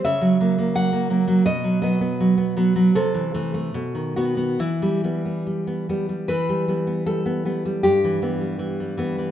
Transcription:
\new Staff \with { instrumentName = "Nylon-string guitar" } { \clef bass \time 2/4 \key e \minor \tempo 4 = 78 << { e''4 fis''4 | dis''8 dis''4 r8 | a'4. fis'8 | e'4 r4 |
b'4 a'4 | g'2 | } \\ { cis16 fis16 <fis ais>16 ais16 fis16 ais16 <fis ais>16 fis16 | b,16 fis16 <fis b>16 b16 fis16 b16 <fis b>16 fis16 | c16 e16 <e a>16 a16 b,16 dis16 <dis b>16 b16 | e16 g16 <g b>16 b16 g16 b16 <g b>16 g16 |
e16 g16 <g b>16 b16 g16 b16 <g b>16 g16 | g,16 e16 <e b>16 g16 e16 g16 <e b>16 e16 | } >> }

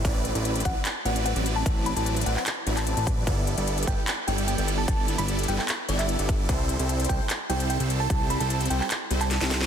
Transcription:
<<
  \new Staff \with { instrumentName = "FM electric piano" } { \time 4/4 \key g \major \tempo 4 = 149 r4. fis''16 r8. fis''8 fis''16 r8 a''16~ | a''8 b''16 a''16 r8 fis''16 fis''16 r8. a''8. r8 | r4. g''16 r8. g''8 g''16 r8 a''16~ | a''8. b''16 r8 g''16 g''16 r8 d''16 e''4 r16 |
r4. g''16 r8. g''8 g''16 r8 a''16~ | a''8 b''16 a''16 r8 g''16 g''16 r8. a''8. r8 | }
  \new Staff \with { instrumentName = "Supersaw synth" } { \time 4/4 \key g \major <fis c' e' b' d''>8. <fis c' e' b' d''>8. <fis c' b'>16 r8. <fis c' e' b' d''>8. <fis c' e' b' d''>8. | <c' e' b'>8. <fis c' e' b' d''>8. <fis c' e' b' d''>16 r8. <fis c' e' b' d''>8. <fis c' e' b' d''>8. | <g b e' a' d''>8. <g b e' a' d''>8. <g b e' a' b'>16 r8. <g b e' a' d''>8. <g b e' a' d''>8. | r8. <g b e' a' d''>8. <g b e' a' b'>16 r8. <g b e' a' d''>8. <g b e' a' d''>8. |
<g c' e' a' c''>8. <g c' e' a' c''>8. <g c' e' a'>16 r8. <g c' e' a' c''>8. <g c' e' a' c''>8. | <g c' e' a' c''>8. <g c' e' a' c''>8. <g c' e' a' c''>16 r8. <g c' e' a' c''>8. <g c' e' a' c''>8. | }
  \new Staff \with { instrumentName = "Analog synth bass" } { \clef bass \time 4/4 \key g \major a,,8. a,,8. a,,16 r8. a,,8. a,,8. | a,,8. a,,8. a,,16 r8. a,,8. a,,8. | g,,8. g,,8. g,,16 r8. g,,8. g,,8. | g,,8. g,,8. g,,16 r8. g,,8. g,,8. |
c,8. c,8. c,16 r8. c,8. c,8. | c,8. c,8. c,16 r8. c,8. c,8. | }
  \new DrumStaff \with { instrumentName = "Drums" } \drummode { \time 4/4 <hh bd>8 hh16 hh16 hh16 hh32 hh32 <hh bd>8 <hc hh>8 hh16 hh16 hh16 hh16 hh8 | <hh bd>8 hh16 hh16 hh16 hh32 hh32 hh16 hc16 <hc hh>8 hh16 <hc hh>16 hh16 hh16 <hh bd>8 | <hh bd>8 hh16 hh16 hh16 hh32 hh32 <hh bd>8 <hc hh>8 hh16 hh16 hh16 hh16 hh8 | <hh bd>8 hh16 hh16 hh16 hh32 hh32 hh16 hc16 <hc hh>8 hh16 <hc hh>16 hh16 hh16 <hh bd>8 |
<hh bd>8 hh16 hh16 hh16 hh32 hh32 <hh bd>8 <hc hh>8 hh16 hh16 hh16 hh16 hh8 | <hh bd>8 hh16 hh16 hh16 hh32 hh32 hh16 hc16 <hc hh>8 hh16 <hc hh>16 <hh sn>16 <hh sn>16 <hh sn>16 sn16 | }
>>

